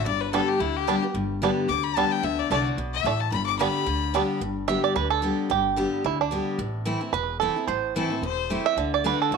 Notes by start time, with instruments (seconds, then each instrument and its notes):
0.05 upright bass G1, steel-string acoustic guitar G2, fiddle D5
0.21 fiddle B4
0.33 steel-string acoustic guitar D3 G3 B3 G4, five-string banjo G3 B3 D4, fiddle A4
0.48 fiddle G4
0.60 upright bass D2, steel-string acoustic guitar D3, fiddle E4
0.76 fiddle G4
0.87 steel-string acoustic guitar D3 G3 B3 G4, five-string banjo G3 B3 D4
1.02 steel-string acoustic guitar B3 G4
1.14 upright bass G1, steel-string acoustic guitar G2
1.42 steel-string acoustic guitar D3 G3 B3 G4, five-string banjo G3 B3 D4
1.68 upright bass D2, steel-string acoustic guitar D3, fiddle D6
1.84 fiddle B5
1.96 steel-string acoustic guitar D3 G3 B3 G4, five-string banjo G3 B3 D4, fiddle A5
2.12 fiddle G5
2.23 upright bass D2, steel-string acoustic guitar D3, fiddle E5
2.39 fiddle D5
2.50 upright bass C2, steel-string acoustic guitar D3 A3 D4 F#4, five-string banjo A3 D4, fiddle D5
2.77 upright bass B1, steel-string acoustic guitar B2
2.93 fiddle E5
3.04 upright bass A1, steel-string acoustic guitar A2, five-string banjo A3 D4
3.20 fiddle A5
3.32 upright bass G1, steel-string acoustic guitar G2, fiddle B5
3.46 fiddle D6
3.59 steel-string acoustic guitar D3 G3 B3 G4, five-string banjo G3 B3 D4, fiddle B5
3.86 upright bass D2, steel-string acoustic guitar D3
4.14 steel-string acoustic guitar D3 G3 B3 G4, five-string banjo G3 B3 D4
4.41 upright bass G1, steel-string acoustic guitar G2
4.68 steel-string acoustic guitar D3 G3 B3 G4, five-string banjo E5
4.84 five-string banjo D5
4.96 upright bass D2, steel-string acoustic guitar D3, five-string banjo B4
5.10 five-string banjo A4
5.22 steel-string acoustic guitar D3 G3 B3 G4
5.50 upright bass G1, steel-string acoustic guitar G2, five-string banjo G4
5.76 steel-string acoustic guitar D3 G3 B3 G4
6.04 upright bass D2, steel-string acoustic guitar D3, five-string banjo E4
6.21 five-string banjo D4
6.31 steel-string acoustic guitar D3 G3 B3 G4
6.58 upright bass A1, steel-string acoustic guitar A2
6.85 steel-string acoustic guitar E3 A3 C4 E4
7.01 steel-string acoustic guitar C4 E4
7.13 upright bass E1, steel-string acoustic guitar E2, five-string banjo B4
7.40 steel-string acoustic guitar E3 A3 C4 E4, five-string banjo A4
7.56 steel-string acoustic guitar C4 E4
7.67 upright bass A1, steel-string acoustic guitar A2, five-string banjo C5
7.95 steel-string acoustic guitar E3 A3 C4 E4, fiddle A4
8.10 steel-string acoustic guitar C4 E4
8.22 upright bass E1, steel-string acoustic guitar E2, fiddle C5
8.50 steel-string acoustic guitar E3 A3 C4 E4
8.66 five-string banjo E5
8.77 upright bass D2, steel-string acoustic guitar D3, five-string banjo D3
8.94 five-string banjo D5
9.04 steel-string acoustic guitar D3 A3 D4 F#4, five-string banjo B4
9.22 five-string banjo A4
9.31 upright bass A1, steel-string acoustic guitar A2, five-string banjo F#4